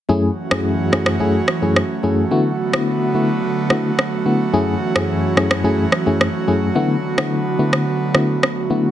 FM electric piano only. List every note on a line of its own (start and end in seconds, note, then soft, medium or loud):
0.09 0.30 F#2 medium
0.09 0.30 A3 medium
0.09 0.30 C#4 medium
0.09 0.30 E4 medium
0.09 0.30 G#4 medium
0.51 0.89 F#2 medium
0.51 0.89 A3 medium
0.51 0.89 C#4 medium
0.51 0.89 E4 medium
0.51 0.89 G#4 medium
0.92 1.18 F#2 medium
0.92 1.18 A3 medium
0.92 1.18 C#4 medium
0.92 1.18 E4 medium
0.92 1.18 G#4 medium
1.20 1.41 F#2 medium
1.20 1.41 A3 medium
1.20 1.41 C#4 medium
1.20 1.41 E4 medium
1.20 1.41 G#4 loud
1.62 1.83 F#2 medium
1.62 1.83 A3 medium
1.62 1.83 C#4 medium
1.62 1.83 E4 medium
1.62 1.83 G#4 medium
2.03 2.24 F#2 medium
2.03 2.24 A3 medium
2.03 2.25 C#4 medium
2.03 2.25 E4 medium
2.03 2.25 G#4 medium
2.31 2.52 D3 medium
2.31 2.52 A3 medium
2.31 2.52 B3 medium
2.31 2.53 E4 medium
2.31 2.53 F#4 loud
2.73 3.11 D3 medium
2.73 3.11 A3 medium
2.73 3.11 B3 medium
2.73 3.11 E4 medium
2.73 3.12 F#4 medium
3.14 3.40 D3 medium
3.14 3.40 A3 medium
3.14 3.40 B3 medium
3.14 3.40 E4 medium
3.14 3.40 F#4 medium
3.70 3.91 D3 medium
3.70 3.91 A3 medium
3.70 3.91 B3 medium
3.70 3.91 E4 medium
3.70 3.92 F#4 medium
4.25 4.47 D3 medium
4.25 4.47 A3 medium
4.25 4.47 B3 medium
4.25 4.47 E4 medium
4.25 4.47 F#4 medium
4.53 4.75 F#2 medium
4.53 4.75 A3 medium
4.53 4.75 C#4 medium
4.53 4.75 E4 medium
4.53 4.75 G#4 loud
4.95 5.33 F#2 medium
4.95 5.34 A3 medium
4.95 5.34 C#4 medium
4.95 5.34 E4 medium
4.95 5.34 G#4 medium
5.36 5.62 F#2 medium
5.36 5.62 A3 medium
5.36 5.63 C#4 medium
5.36 5.63 E4 medium
5.36 5.63 G#4 medium
5.64 5.85 F#2 medium
5.64 5.85 A3 medium
5.64 5.86 C#4 medium
5.64 5.86 E4 medium
5.64 5.86 G#4 loud
6.06 6.27 F#2 medium
6.06 6.27 A3 medium
6.06 6.27 C#4 medium
6.06 6.27 E4 medium
6.06 6.27 G#4 medium
6.47 6.69 F#2 medium
6.47 6.69 A3 medium
6.47 6.69 C#4 medium
6.47 6.69 E4 medium
6.47 6.69 G#4 medium
6.75 6.97 D3 medium
6.75 6.97 A3 medium
6.75 6.97 B3 medium
6.75 6.97 E4 medium
6.75 6.97 F#4 medium
7.18 7.56 D3 medium
7.18 7.56 A3 medium
7.18 7.56 B3 medium
7.18 7.56 E4 medium
7.18 7.56 F#4 medium
7.59 7.85 D3 medium
7.59 7.85 A3 medium
7.59 7.85 B3 medium
7.59 7.85 E4 medium
7.59 7.85 F#4 medium
8.14 8.36 D3 medium
8.14 8.36 A3 medium
8.14 8.36 B3 medium
8.14 8.36 E4 medium
8.14 8.36 F#4 medium
8.70 8.91 D3 medium
8.70 8.91 A3 medium
8.70 8.91 B3 medium
8.70 8.91 E4 medium
8.70 8.91 F#4 medium